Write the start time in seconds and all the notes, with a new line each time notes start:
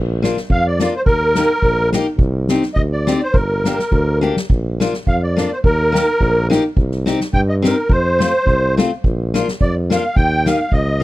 Already playing: A#1
0.22 A#3 D4 F4, snare, hi-hat pedal
0.37 snare
0.49 F2 F5, kick
0.67 D5
0.79 A#3 D4 F4, snare, hi-hat pedal
0.96 C5
1.06 D#2 A#4, kick
1.35 A#3 D#4 G4, snare, hi-hat pedal
1.62 A#1, kick
1.93 A#3 D#4 G4, snare, hi-hat pedal
2.18 C2, kick
2.48 C4 D#4 G4, snare, hi-hat pedal
2.62 snare
2.74 D2 D#5, kick
2.92 D5
3.07 C4 D#4 G4, snare, hi-hat pedal
3.23 C5
3.34 G1 A#4, kick
3.65 A#3 D4 G4, snare, hi-hat pedal
3.79 snare
3.91 D2, kick
4.21 A#3 D4 G4, hi-hat pedal
4.36 snare
4.50 A#1, kick
4.80 A#3 D4 F4, snare, hi-hat pedal
4.93 snare
5.07 F2 F5, kick
5.23 D5
5.37 A#3 D4 F4, snare, hi-hat pedal
5.53 C5
5.64 D#2 A#4, kick
5.92 A#3 D#4 G4, snare, hi-hat pedal
6.20 A#1, kick
6.50 A#3 D#4 G4, snare, hi-hat pedal
6.77 C2, kick
6.91 snare
7.06 C4 D#4 G4, snare, hi-hat pedal
7.20 snare
7.33 G2 G5, kick
7.49 D#5
7.62 C4 D#4 G4, snare, hi-hat pedal
7.67 A#4
7.89 F2 C5, kick
8.19 A3 C4 F4, snare, hi-hat pedal
8.46 C2, kick
8.77 A3 C4 F4, snare, hi-hat pedal
9.04 A#1, kick
9.34 A#3 D4 F4, snare, hi-hat pedal
9.48 snare
9.61 F2 D5, kick
9.90 A#3 D4 F4 F5, snare, hi-hat pedal
10.16 D#2 G5, kick
10.46 A#3 D#4 G4 F5, snare, hi-hat pedal
10.72 C#2 D#5, kick
11.00 A#3